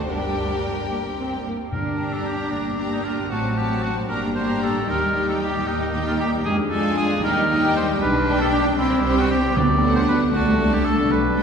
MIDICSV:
0, 0, Header, 1, 9, 480
1, 0, Start_track
1, 0, Tempo, 539568
1, 76, Time_signature, 6, 3, 24, 8
1, 2474, Tempo, 520382
1, 10451, End_track
2, 0, Start_track
2, 0, Title_t, "Violin section"
2, 0, Program_c, 0, 48
2, 75, Note_on_c, 0, 79, 49
2, 1266, Note_off_c, 0, 79, 0
2, 1777, Note_on_c, 0, 82, 38
2, 2465, Note_off_c, 0, 82, 0
2, 2482, Note_on_c, 0, 82, 40
2, 2952, Note_off_c, 0, 82, 0
2, 2963, Note_on_c, 0, 81, 38
2, 3189, Note_off_c, 0, 81, 0
2, 3201, Note_on_c, 0, 81, 42
2, 3673, Note_off_c, 0, 81, 0
2, 3682, Note_on_c, 0, 82, 41
2, 3920, Note_off_c, 0, 82, 0
2, 3933, Note_on_c, 0, 82, 44
2, 4405, Note_off_c, 0, 82, 0
2, 4420, Note_on_c, 0, 79, 42
2, 4647, Note_off_c, 0, 79, 0
2, 4658, Note_on_c, 0, 79, 50
2, 5365, Note_off_c, 0, 79, 0
2, 5384, Note_on_c, 0, 79, 52
2, 5850, Note_off_c, 0, 79, 0
2, 6104, Note_on_c, 0, 80, 57
2, 6573, Note_off_c, 0, 80, 0
2, 6580, Note_on_c, 0, 79, 50
2, 6816, Note_off_c, 0, 79, 0
2, 6826, Note_on_c, 0, 79, 59
2, 7293, Note_off_c, 0, 79, 0
2, 7542, Note_on_c, 0, 79, 63
2, 8007, Note_off_c, 0, 79, 0
2, 8016, Note_on_c, 0, 79, 51
2, 8242, Note_off_c, 0, 79, 0
2, 8254, Note_on_c, 0, 79, 61
2, 8718, Note_off_c, 0, 79, 0
2, 8965, Note_on_c, 0, 78, 58
2, 9428, Note_off_c, 0, 78, 0
2, 9433, Note_on_c, 0, 81, 52
2, 9661, Note_off_c, 0, 81, 0
2, 9672, Note_on_c, 0, 81, 57
2, 10145, Note_off_c, 0, 81, 0
2, 10398, Note_on_c, 0, 79, 56
2, 10451, Note_off_c, 0, 79, 0
2, 10451, End_track
3, 0, Start_track
3, 0, Title_t, "Oboe"
3, 0, Program_c, 1, 68
3, 1528, Note_on_c, 1, 70, 62
3, 1891, Note_on_c, 1, 69, 52
3, 1904, Note_off_c, 1, 70, 0
3, 2005, Note_off_c, 1, 69, 0
3, 2010, Note_on_c, 1, 67, 59
3, 2236, Note_off_c, 1, 67, 0
3, 2242, Note_on_c, 1, 62, 55
3, 2589, Note_off_c, 1, 62, 0
3, 2608, Note_on_c, 1, 63, 50
3, 2719, Note_on_c, 1, 65, 56
3, 2733, Note_off_c, 1, 63, 0
3, 2953, Note_off_c, 1, 65, 0
3, 2958, Note_on_c, 1, 66, 61
3, 3204, Note_on_c, 1, 67, 66
3, 3218, Note_off_c, 1, 66, 0
3, 3437, Note_off_c, 1, 67, 0
3, 3442, Note_on_c, 1, 66, 66
3, 3551, Note_off_c, 1, 66, 0
3, 3683, Note_on_c, 1, 70, 65
3, 3792, Note_off_c, 1, 70, 0
3, 3927, Note_on_c, 1, 72, 70
3, 4164, Note_off_c, 1, 72, 0
3, 4176, Note_on_c, 1, 69, 64
3, 4410, Note_off_c, 1, 69, 0
3, 4421, Note_on_c, 1, 70, 81
3, 4773, Note_off_c, 1, 70, 0
3, 4788, Note_on_c, 1, 69, 58
3, 4840, Note_off_c, 1, 69, 0
3, 4905, Note_on_c, 1, 67, 71
3, 5142, Note_on_c, 1, 63, 74
3, 5156, Note_off_c, 1, 67, 0
3, 5500, Note_off_c, 1, 63, 0
3, 5513, Note_on_c, 1, 65, 65
3, 5564, Note_off_c, 1, 65, 0
3, 5628, Note_on_c, 1, 67, 80
3, 5733, Note_off_c, 1, 67, 0
3, 5859, Note_on_c, 1, 68, 82
3, 5966, Note_off_c, 1, 68, 0
3, 6092, Note_on_c, 1, 69, 79
3, 6330, Note_off_c, 1, 69, 0
3, 6336, Note_on_c, 1, 68, 91
3, 6573, Note_off_c, 1, 68, 0
3, 6588, Note_on_c, 1, 70, 93
3, 7055, Note_off_c, 1, 70, 0
3, 7066, Note_on_c, 1, 72, 84
3, 7172, Note_off_c, 1, 72, 0
3, 7304, Note_on_c, 1, 71, 102
3, 7652, Note_off_c, 1, 71, 0
3, 7669, Note_on_c, 1, 69, 76
3, 7720, Note_off_c, 1, 69, 0
3, 7776, Note_on_c, 1, 67, 85
3, 7883, Note_off_c, 1, 67, 0
3, 8015, Note_on_c, 1, 64, 85
3, 8386, Note_on_c, 1, 66, 87
3, 8400, Note_off_c, 1, 64, 0
3, 8489, Note_off_c, 1, 66, 0
3, 8495, Note_on_c, 1, 67, 91
3, 8738, Note_on_c, 1, 74, 105
3, 8752, Note_off_c, 1, 67, 0
3, 9087, Note_off_c, 1, 74, 0
3, 9094, Note_on_c, 1, 72, 81
3, 9144, Note_off_c, 1, 72, 0
3, 9212, Note_on_c, 1, 71, 87
3, 9316, Note_off_c, 1, 71, 0
3, 9448, Note_on_c, 1, 66, 87
3, 9811, Note_on_c, 1, 67, 80
3, 9824, Note_off_c, 1, 66, 0
3, 9919, Note_on_c, 1, 69, 88
3, 9933, Note_off_c, 1, 67, 0
3, 10162, Note_on_c, 1, 71, 89
3, 10175, Note_off_c, 1, 69, 0
3, 10451, Note_off_c, 1, 71, 0
3, 10451, End_track
4, 0, Start_track
4, 0, Title_t, "Violin section"
4, 0, Program_c, 2, 48
4, 80, Note_on_c, 2, 67, 47
4, 83, Note_on_c, 2, 70, 46
4, 1325, Note_off_c, 2, 67, 0
4, 1352, Note_off_c, 2, 70, 0
4, 1774, Note_on_c, 2, 67, 41
4, 2464, Note_off_c, 2, 67, 0
4, 2475, Note_on_c, 2, 67, 38
4, 2948, Note_off_c, 2, 67, 0
4, 2958, Note_on_c, 2, 66, 42
4, 3190, Note_off_c, 2, 66, 0
4, 3201, Note_on_c, 2, 66, 44
4, 3674, Note_off_c, 2, 66, 0
4, 3680, Note_on_c, 2, 67, 41
4, 3919, Note_off_c, 2, 67, 0
4, 3929, Note_on_c, 2, 67, 45
4, 4399, Note_off_c, 2, 67, 0
4, 4410, Note_on_c, 2, 67, 49
4, 4642, Note_off_c, 2, 67, 0
4, 4653, Note_on_c, 2, 67, 54
4, 5363, Note_off_c, 2, 67, 0
4, 5379, Note_on_c, 2, 67, 51
4, 5848, Note_off_c, 2, 67, 0
4, 6095, Note_on_c, 2, 65, 57
4, 6568, Note_off_c, 2, 65, 0
4, 6571, Note_on_c, 2, 67, 54
4, 6808, Note_off_c, 2, 67, 0
4, 6819, Note_on_c, 2, 67, 62
4, 7289, Note_off_c, 2, 67, 0
4, 7542, Note_on_c, 2, 67, 62
4, 8007, Note_off_c, 2, 67, 0
4, 8024, Note_on_c, 2, 67, 54
4, 8242, Note_off_c, 2, 67, 0
4, 8253, Note_on_c, 2, 67, 60
4, 8718, Note_off_c, 2, 67, 0
4, 8961, Note_on_c, 2, 62, 64
4, 9424, Note_off_c, 2, 62, 0
4, 9435, Note_on_c, 2, 62, 49
4, 9665, Note_off_c, 2, 62, 0
4, 9676, Note_on_c, 2, 62, 58
4, 10147, Note_off_c, 2, 62, 0
4, 10405, Note_on_c, 2, 62, 58
4, 10451, Note_off_c, 2, 62, 0
4, 10451, End_track
5, 0, Start_track
5, 0, Title_t, "Viola section"
5, 0, Program_c, 3, 48
5, 76, Note_on_c, 3, 55, 43
5, 77, Note_on_c, 3, 62, 41
5, 743, Note_off_c, 3, 62, 0
5, 757, Note_off_c, 3, 55, 0
5, 798, Note_on_c, 3, 58, 43
5, 869, Note_off_c, 3, 58, 0
5, 1044, Note_on_c, 3, 60, 45
5, 1284, Note_off_c, 3, 60, 0
5, 1285, Note_on_c, 3, 58, 38
5, 1523, Note_off_c, 3, 58, 0
5, 1767, Note_on_c, 3, 62, 40
5, 2460, Note_off_c, 3, 62, 0
5, 2475, Note_on_c, 3, 62, 39
5, 2949, Note_off_c, 3, 62, 0
5, 2961, Note_on_c, 3, 60, 40
5, 3185, Note_off_c, 3, 60, 0
5, 3196, Note_on_c, 3, 60, 42
5, 3671, Note_off_c, 3, 60, 0
5, 3686, Note_on_c, 3, 62, 46
5, 3913, Note_off_c, 3, 62, 0
5, 3924, Note_on_c, 3, 62, 44
5, 4401, Note_off_c, 3, 62, 0
5, 4408, Note_on_c, 3, 63, 47
5, 4647, Note_off_c, 3, 63, 0
5, 4657, Note_on_c, 3, 63, 48
5, 5365, Note_off_c, 3, 63, 0
5, 5380, Note_on_c, 3, 63, 53
5, 5848, Note_off_c, 3, 63, 0
5, 6089, Note_on_c, 3, 62, 55
5, 6565, Note_off_c, 3, 62, 0
5, 6576, Note_on_c, 3, 63, 61
5, 6806, Note_off_c, 3, 63, 0
5, 6817, Note_on_c, 3, 63, 62
5, 7288, Note_off_c, 3, 63, 0
5, 7533, Note_on_c, 3, 62, 60
5, 8002, Note_off_c, 3, 62, 0
5, 8013, Note_on_c, 3, 60, 65
5, 8232, Note_off_c, 3, 60, 0
5, 8243, Note_on_c, 3, 60, 57
5, 8713, Note_off_c, 3, 60, 0
5, 8960, Note_on_c, 3, 57, 59
5, 9417, Note_off_c, 3, 57, 0
5, 9428, Note_on_c, 3, 57, 58
5, 9662, Note_off_c, 3, 57, 0
5, 9673, Note_on_c, 3, 57, 55
5, 10145, Note_off_c, 3, 57, 0
5, 10398, Note_on_c, 3, 59, 55
5, 10451, Note_off_c, 3, 59, 0
5, 10451, End_track
6, 0, Start_track
6, 0, Title_t, "French horn section"
6, 0, Program_c, 4, 60
6, 1527, Note_on_c, 4, 55, 46
6, 1529, Note_on_c, 4, 62, 49
6, 2919, Note_off_c, 4, 55, 0
6, 2920, Note_off_c, 4, 62, 0
6, 2960, Note_on_c, 4, 54, 49
6, 2960, Note_on_c, 4, 60, 44
6, 3669, Note_off_c, 4, 60, 0
6, 3683, Note_off_c, 4, 54, 0
6, 3683, Note_on_c, 4, 55, 53
6, 3687, Note_on_c, 4, 62, 44
6, 4405, Note_on_c, 4, 63, 57
6, 4413, Note_off_c, 4, 62, 0
6, 5820, Note_off_c, 4, 55, 0
6, 5825, Note_off_c, 4, 63, 0
6, 5852, Note_on_c, 4, 56, 60
6, 5859, Note_on_c, 4, 62, 62
6, 6562, Note_off_c, 4, 56, 0
6, 6576, Note_on_c, 4, 55, 69
6, 6577, Note_on_c, 4, 63, 60
6, 6580, Note_off_c, 4, 62, 0
6, 7293, Note_on_c, 4, 62, 71
6, 7298, Note_off_c, 4, 63, 0
6, 7997, Note_off_c, 4, 62, 0
6, 8005, Note_on_c, 4, 60, 66
6, 8723, Note_off_c, 4, 60, 0
6, 8724, Note_on_c, 4, 54, 66
6, 8724, Note_on_c, 4, 62, 73
6, 8726, Note_off_c, 4, 55, 0
6, 9276, Note_off_c, 4, 54, 0
6, 9433, Note_on_c, 4, 57, 64
6, 10140, Note_off_c, 4, 57, 0
6, 10154, Note_on_c, 4, 55, 65
6, 10451, Note_off_c, 4, 55, 0
6, 10451, Note_off_c, 4, 62, 0
6, 10451, End_track
7, 0, Start_track
7, 0, Title_t, "Cello section"
7, 0, Program_c, 5, 48
7, 77, Note_on_c, 5, 43, 42
7, 1323, Note_off_c, 5, 43, 0
7, 1527, Note_on_c, 5, 62, 47
7, 2203, Note_off_c, 5, 62, 0
7, 2241, Note_on_c, 5, 58, 48
7, 2955, Note_on_c, 5, 57, 50
7, 2958, Note_off_c, 5, 58, 0
7, 3666, Note_off_c, 5, 57, 0
7, 3681, Note_on_c, 5, 58, 55
7, 4395, Note_off_c, 5, 58, 0
7, 4410, Note_on_c, 5, 55, 56
7, 5122, Note_off_c, 5, 55, 0
7, 5138, Note_on_c, 5, 58, 65
7, 5843, Note_off_c, 5, 58, 0
7, 5856, Note_on_c, 5, 56, 65
7, 6573, Note_on_c, 5, 55, 68
7, 6578, Note_off_c, 5, 56, 0
7, 7282, Note_off_c, 5, 55, 0
7, 7292, Note_on_c, 5, 62, 76
7, 8009, Note_on_c, 5, 60, 81
7, 8010, Note_off_c, 5, 62, 0
7, 8711, Note_off_c, 5, 60, 0
7, 8724, Note_on_c, 5, 59, 71
7, 9432, Note_on_c, 5, 57, 72
7, 9435, Note_off_c, 5, 59, 0
7, 10149, Note_on_c, 5, 55, 62
7, 10154, Note_off_c, 5, 57, 0
7, 10451, Note_off_c, 5, 55, 0
7, 10451, End_track
8, 0, Start_track
8, 0, Title_t, "Timpani"
8, 0, Program_c, 6, 47
8, 1530, Note_on_c, 6, 43, 52
8, 2205, Note_off_c, 6, 43, 0
8, 8732, Note_on_c, 6, 50, 75
8, 9402, Note_off_c, 6, 50, 0
8, 10451, End_track
9, 0, Start_track
9, 0, Title_t, "Double bass section"
9, 0, Program_c, 7, 48
9, 79, Note_on_c, 7, 31, 41
9, 1325, Note_off_c, 7, 31, 0
9, 1532, Note_on_c, 7, 31, 46
9, 2158, Note_off_c, 7, 31, 0
9, 2240, Note_on_c, 7, 31, 46
9, 2873, Note_off_c, 7, 31, 0
9, 2956, Note_on_c, 7, 33, 48
9, 3595, Note_off_c, 7, 33, 0
9, 3685, Note_on_c, 7, 31, 53
9, 4326, Note_off_c, 7, 31, 0
9, 4412, Note_on_c, 7, 39, 55
9, 5052, Note_off_c, 7, 39, 0
9, 5134, Note_on_c, 7, 39, 62
9, 5771, Note_off_c, 7, 39, 0
9, 5855, Note_on_c, 7, 41, 67
9, 6492, Note_off_c, 7, 41, 0
9, 6577, Note_on_c, 7, 39, 69
9, 7214, Note_off_c, 7, 39, 0
9, 7304, Note_on_c, 7, 35, 69
9, 7932, Note_off_c, 7, 35, 0
9, 8012, Note_on_c, 7, 36, 71
9, 8642, Note_off_c, 7, 36, 0
9, 8725, Note_on_c, 7, 38, 70
9, 9351, Note_off_c, 7, 38, 0
9, 9436, Note_on_c, 7, 36, 72
9, 10070, Note_off_c, 7, 36, 0
9, 10150, Note_on_c, 7, 35, 70
9, 10451, Note_off_c, 7, 35, 0
9, 10451, End_track
0, 0, End_of_file